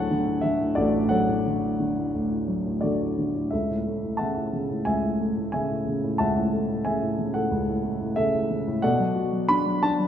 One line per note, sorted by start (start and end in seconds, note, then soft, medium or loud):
0.00 2.14 D2 medium
0.00 0.27 A2 medium
0.00 0.11 D3 medium
0.00 1.11 F#3 medium
0.00 0.77 A4 medium
0.00 1.10 C#5 medium
0.00 1.09 F#5 loud
0.00 3.54 G#5 medium
0.00 3.54 A5 loud
0.11 0.42 D3 medium
0.27 0.59 A2 soft
0.41 1.45 D3 soft
0.41 0.77 E5 medium
0.61 0.93 A2 soft
0.75 3.49 A1 medium
0.75 2.09 F#4 soft
0.75 1.10 A4 medium
0.75 1.11 D5 medium
0.95 1.27 A2 soft
1.09 2.44 F#3 soft
1.09 2.79 A4 medium
1.09 2.79 C#5 medium
1.09 2.87 F#5 medium
1.29 1.61 A2 soft
1.46 1.78 D3 soft
1.63 1.96 A2 soft
1.80 2.82 D3 soft
1.97 2.30 A2 soft
2.14 3.49 D2 medium
2.31 2.64 A2 soft
2.48 3.50 F#3 soft
2.66 3.00 A2 soft
2.81 3.17 D3 soft
2.81 3.48 F#4 soft
2.81 3.48 A4 soft
2.81 3.47 D5 medium
3.01 3.34 A2 soft
3.18 3.52 D3 soft
3.36 3.52 A2 soft
3.51 4.85 C#2 soft
3.51 4.83 A4 soft
3.51 4.17 E5 medium
3.70 4.02 A2 soft
3.87 5.17 A3 soft
4.04 4.35 A2 soft
4.17 4.52 C#3 soft
4.17 4.85 E5 medium
4.17 5.49 F#5 soft
4.17 4.81 A5 medium
4.36 4.69 A2 soft
4.53 5.52 C#3 soft
4.70 5.02 A2 soft
4.85 6.19 C#2 soft
4.85 5.52 E5 medium
4.85 5.51 G#5 medium
5.03 5.35 A2 soft
5.20 6.49 A3 soft
5.36 5.69 A2 soft
5.52 5.85 C#3 soft
5.52 6.18 E5 medium
5.52 6.21 G#5 medium
5.70 6.02 A2 soft
5.86 6.85 C#3 soft
6.04 6.35 A2 soft
6.18 7.50 C#2 medium
6.18 6.84 E5 medium
6.18 7.32 F#5 medium
6.18 6.87 A5 medium
6.36 6.67 A2 soft
6.53 7.80 A3 soft
6.69 7.01 A2 soft
6.85 7.17 C#3 medium
6.85 8.13 E5 medium
6.85 7.36 G#5 medium
7.02 7.33 A2 soft
7.18 8.16 C#3 soft
7.34 7.66 A2 soft
7.34 8.16 A4 medium
7.34 8.19 F#5 medium
7.51 8.79 C#2 medium
7.67 7.99 A2 medium
7.84 8.80 A3 soft
8.01 8.32 A2 soft
8.16 8.49 C#3 medium
8.16 8.79 A4 medium
8.16 8.85 E5 medium
8.34 8.66 A2 soft
8.51 8.82 C#3 soft
8.67 8.83 A2 medium
8.82 10.08 B2 medium
8.82 10.08 A4 medium
8.82 10.08 D5 medium
8.82 9.51 F#5 medium
8.99 9.31 F#3 soft
9.16 10.08 F#4 medium
9.32 9.64 F#3 soft
9.49 9.81 D4 medium
9.49 9.83 B5 loud
9.66 9.98 F#3 soft
9.83 10.08 D4 medium
9.83 10.08 A5 medium
9.99 10.08 F#3 soft